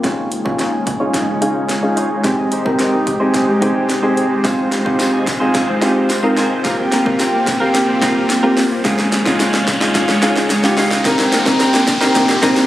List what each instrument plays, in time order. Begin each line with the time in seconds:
Already playing: harp A#3 C4 D#4 G5, string machine F4, riser
0.04 string machine G#3 C#4 D#4 C#5, synth keys C#4 D#4 F4 G#4, harp C#4, clean electric guitar D#4 F4 C#5, kick, snare, closed hi-hat
0.31 muted clean electric guitar stroke, closed hi-hat
0.45 synth keys C#4 D#4 F4 G#4, harp C#4, clean electric guitar D#4 F4 C#5, kick
0.59 clean electric guitar D#4 F4 C#5, harp D#4, snare, closed hi-hat
0.73 harp G#5, muted clean electric guitar stroke
0.86 muted clean electric guitar stroke, kick, closed hi-hat
1.00 synth keys C#4 D#4 F4 G#4, harp D#4, clean electric guitar D#4 F4 C#5
1.14 harp G#5, muted clean electric guitar stroke, kick, snare, closed hi-hat
1.28 harp C#4, muted clean electric guitar stroke
1.41 synth keys C#4 D#4 F4 G#4, clean electric guitar D#4 F4 C#5, harp D#4, closed hi-hat
1.55 muted clean electric guitar stroke
1.69 harp C#4, muted clean electric guitar stroke, snare, closed hi-hat
1.83 synth keys C#4 D#4 F4 G#4, harp D#4, muted clean electric guitar stroke
1.96 clean electric guitar D#4 F4 C#5, harp G#5, closed hi-hat
2.10 clean electric guitar D#4 F4 C#5
2.24 synth keys C4 D#4 G4 G#4, string machine C4 G4 C5, clean electric guitar D#4 G4 C5, kick, snare, closed hi-hat
2.38 harp D#5, muted clean electric guitar stroke
2.51 clean electric guitar D#4 G4 C5, harp D#4, closed hi-hat
2.65 synth keys C4 D#4 G4 A#4, clean electric guitar D#4 G4 C5, harp G4, kick
2.79 clean electric guitar D#4 G4 C5, harp D#5, snare, closed hi-hat
2.93 harp D#4, muted clean electric guitar stroke
3.07 harp G4, muted clean electric guitar stroke, kick, closed hi-hat
3.20 synth keys C4 D#4 G4 G#4, clean electric guitar D#4 G4 C5, harp D#5
3.34 harp D#4, muted clean electric guitar stroke, kick, snare, closed hi-hat
3.48 harp G4, muted clean electric guitar stroke
3.61 synth keys C4 D#4 G4 G#4, clean electric guitar D#4 G4 C5, kick, closed hi-hat
3.75 harp D#4, clean electric guitar D#4 G4 C5
3.89 snare, closed hi-hat
4.03 synth keys C4 D#4 G4 G#4, clean electric guitar D#4 G4 C5
4.17 harp D#4, muted clean electric guitar stroke, closed hi-hat
4.30 harp G4, muted clean electric guitar stroke
4.44 synth keys C4 D#4 F4 G#4, harp C4, clean electric guitar D#4 G#4 C5, string machine D#4 F4, kick, snare, closed hi-hat, tambourine
4.71 muted clean electric guitar stroke, snare, closed hi-hat
4.85 synth keys C4 D#4 F4 G4, harp C4, clean electric guitar D#4 G#4 C5, kick
4.99 clean electric guitar D#4 G#4 C5, harp D#4, snare, closed hi-hat, tambourine
5.13 harp G#5, muted clean electric guitar stroke
5.26 muted clean electric guitar stroke, kick, snare, closed hi-hat, tambourine
5.40 synth keys C4 D#4 F4 G#4, harp D#4, clean electric guitar D#4 G#4 C5
5.54 harp G#5, kick, snare, closed hi-hat, tambourine
5.68 harp C4, muted clean electric guitar stroke
5.81 synth keys C4 D#4 F4 G4, clean electric guitar D#4 G#4 C5, harp D#4, snare, closed hi-hat, tambourine
5.95 muted clean electric guitar stroke
6.09 harp C4, muted clean electric guitar stroke, snare, closed hi-hat, tambourine
6.23 synth keys C4 D#4 F4 A#4, harp D#4, muted clean electric guitar stroke
6.36 clean electric guitar D#4 G#4 C5, harp G#5, snare, closed hi-hat, tambourine
6.50 clean electric guitar D#4 G#4 C5
6.64 synth keys A#3 C4 F4 G4, string machine A#3 C4 G4, clean electric guitar C4 F4 A#4, kick, snare, closed hi-hat, tambourine
6.78 harp G5, muted clean electric guitar stroke
6.91 harp A#3, clean electric guitar C4 F4 A#4, snare, closed hi-hat
7.05 synth keys A#3 C4 F4 G4, harp C4, clean electric guitar C4 F4 A#4, kick
7.19 clean electric guitar C4 F4 A#4, harp G5, snare, closed hi-hat, tambourine
7.33 harp A#3, muted clean electric guitar stroke
7.47 harp C4, muted clean electric guitar stroke, kick, snare, closed hi-hat, tambourine
7.60 synth keys A#3 C4 F4 G4, clean electric guitar C4 F4 A#4, harp G5
7.74 harp A#3, muted clean electric guitar stroke, snare, closed hi-hat, tambourine
7.88 harp C4, muted clean electric guitar stroke
8.02 synth keys A#3 C4 F4 G4, clean electric guitar C4 F4 A#4, kick, snare, closed hi-hat, tambourine
8.15 harp A#3, clean electric guitar C4 F4 A#4
8.29 muted clean electric guitar stroke, snare, closed hi-hat, tambourine
8.43 synth keys A#3 C4 F4 G4, clean electric guitar C4 F4 A#4
8.57 harp A#3, muted clean electric guitar stroke, snare, open hi-hat, tambourine
8.70 harp C4, muted clean electric guitar stroke
8.84 clean electric guitar G#3 D#4 F4, harp G#3, string machine G#3 C#4 D#4 F4 C#5, synth keys C#4 D#4 F4 G#4, kick, snare, closed hi-hat, tambourine
8.99 snare
9.12 snare, closed hi-hat, tambourine
9.25 harp G#3, clean electric guitar G#3 D#4 F4, synth keys C#4 D#4 F4 G#4, kick, snare
9.39 clean electric guitar G#3 D#4 F4, harp C#4, snare, closed hi-hat, tambourine
9.53 harp F5, muted clean electric guitar stroke, snare
9.67 muted clean electric guitar stroke, kick, snare, closed hi-hat, tambourine
9.81 clean electric guitar G#3 D#4 F4, synth keys C#4 D#4 F4 G#4, harp C#4, snare
9.95 harp F5, muted clean electric guitar stroke, kick, snare, closed hi-hat
10.08 harp G#3, muted clean electric guitar stroke, snare
10.22 clean electric guitar G#3 D#4 F4, synth keys C#4 D#4 F4 G#4, harp C#4, snare, closed hi-hat, tambourine
10.36 muted clean electric guitar stroke, snare
10.50 harp G#3, muted clean electric guitar stroke, snare, closed hi-hat, tambourine
10.63 synth keys C#4 D#4 F4 G4, harp C#4, muted clean electric guitar stroke, snare
10.77 clean electric guitar G#3 D#4 F4, harp F5, snare, open hi-hat, tambourine
10.91 clean electric guitar G#3 D#4 F4, snare
11.04 string machine A#3 C4 G4 C5, clean electric guitar C4 D#4 A#4, synth keys C4 D#4 G4 A#4, kick, snare, closed hi-hat, tambourine
11.18 harp G5, muted clean electric guitar stroke, snare
11.32 harp A#3, clean electric guitar C4 D#4 A#4, snare, closed hi-hat
11.46 synth keys C4 D#4 G4 A#4, clean electric guitar C4 D#4 A#4, kick, snare
11.59 clean electric guitar C4 D#4 A#4, harp G5, snare, closed hi-hat, tambourine
11.73 harp A#3, muted clean electric guitar stroke, snare
11.87 harp C4, muted clean electric guitar stroke, kick, snare, closed hi-hat, tambourine
12.01 synth keys C4 D#4 G4 A#4, clean electric guitar C4 D#4 A#4, harp G5, snare
12.15 harp A#3, muted clean electric guitar stroke, kick, snare, closed hi-hat
12.28 harp C4, muted clean electric guitar stroke, snare
12.42 clean electric guitar C4 D#4 A#4, synth keys C4 D#4 G4 A#4, kick, snare, closed hi-hat, tambourine
12.56 harp A#3, clean electric guitar C4 A#4, snare